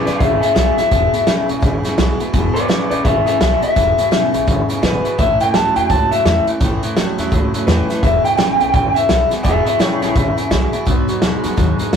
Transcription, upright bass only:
0.07 0.17 B1 medium
0.20 0.37 G#1 medium
0.42 muted upright bass stroke medium
0.56 0.72 B1 medium
0.78 muted upright bass stroke medium
0.92 1.08 E1 medium
1.14 muted upright bass stroke medium
1.27 1.43 G#1 medium
1.49 1.59 B1 medium
1.62 1.79 G#1 medium
1.84 muted upright bass stroke medium
1.97 2.14 B1 medium
2.19 muted upright bass stroke medium
2.34 2.50 E1 medium
2.69 2.85 G#1 loud
2.91 3.01 B1 medium
3.05 3.21 G#1 loud
3.27 muted upright bass stroke medium
3.40 3.57 B1 medium
3.62 muted upright bass stroke medium
3.77 3.93 E1 medium
4.12 4.28 G#1 medium
4.34 4.44 B1 medium
4.47 4.64 G#1 loud
4.83 4.99 G#1 medium
5.05 muted upright bass stroke medium
5.19 5.35 A1 medium
5.41 muted upright bass stroke medium
5.54 5.70 C#2 medium
5.76 5.86 E2 medium
5.90 6.06 C#2 medium
6.11 muted upright bass stroke medium
6.25 6.41 E2 medium
6.47 muted upright bass stroke medium
6.61 6.77 A1 medium
6.82 muted upright bass stroke medium
6.96 7.12 C#2 medium
7.18 7.28 E2 medium
7.32 7.48 C#2 loud
7.54 muted upright bass stroke medium
7.67 7.83 E2 loud
7.89 muted upright bass stroke medium
8.03 8.19 E1 medium
8.24 muted upright bass stroke medium
8.38 8.54 G#1 medium
8.60 8.70 B1 medium
8.74 8.90 G#1 loud
8.96 muted upright bass stroke medium
9.09 9.26 B1 medium
9.31 muted upright bass stroke medium
9.45 9.61 E1 medium
9.66 muted upright bass stroke medium
9.80 9.96 G#1 medium
10.01 10.12 B1 medium
10.16 10.32 G#1 loud
10.38 muted upright bass stroke medium
10.51 10.67 B1 medium
10.87 11.03 B1 medium
11.23 11.39 D#2 medium
11.44 11.54 F#2 medium
11.58 11.74 D#2 loud
11.80 muted upright bass stroke medium
11.93 11.96 F#2 medium

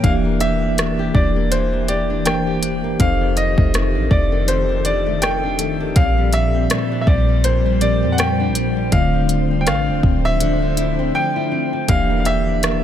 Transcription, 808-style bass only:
0.04 1.11 E1 medium
1.15 2.96 E1 loud
3.00 3.56 F1 loud
3.58 3.97 F1 loud
3.96 4.10 A1 medium
4.11 5.92 F1 loud
5.96 6.67 A#1 loud
7.07 8.05 A#1 loud
8.03 8.50 F2 medium
8.48 8.90 A#1 medium
8.93 9.69 D1 loud
9.67 9.90 A1 medium
9.89 10.03 D1 medium
10.04 11.11 D1 loud
11.89 12.84 E1 loud

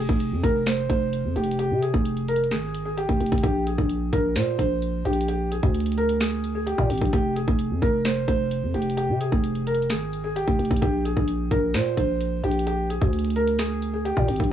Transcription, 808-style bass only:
0.09 0.34 F1 loud
0.32 0.43 F2 loud
0.44 0.88 F1 loud
0.90 1.26 F1 loud
1.24 1.35 F2 loud
1.36 1.72 F1 loud
1.71 1.92 C3 loud
1.94 2.53 F1 loud
2.51 3.06 G#1 loud
3.09 3.20 F1 loud
3.21 3.32 F1 loud
3.32 3.43 F1 loud
3.44 3.77 A#1 loud
3.78 4.12 A#1 loud
4.13 4.37 A#1 loud
4.36 4.58 A#2 loud
4.59 5.03 A#1 loud
5.05 5.61 A#1 loud
5.63 6.74 D2 loud
6.78 6.89 A#2 loud
6.90 7.01 G#1 loud
7.01 7.12 A#1 loud
7.13 7.46 F1 loud
7.48 7.72 F1 loud
7.71 7.82 F2 loud
7.82 8.26 F1 loud
8.28 8.64 F1 loud
8.63 8.74 F2 medium
8.74 9.11 F1 loud
9.09 9.31 C3 loud
9.32 9.91 F1 loud
9.90 10.45 G#1 loud
10.47 10.59 F1 loud
10.59 10.70 F1 loud
10.71 10.82 F1 loud
10.82 11.15 A#1 loud
11.17 11.50 A#1 loud
11.51 11.76 A#1 loud
11.74 11.96 A#2 loud
11.97 12.42 A#1 loud
12.44 12.99 A#1 loud
13.01 14.13 D2 loud
14.17 14.28 A#2 loud
14.28 14.39 G#1 loud
14.40 14.51 A#1 loud

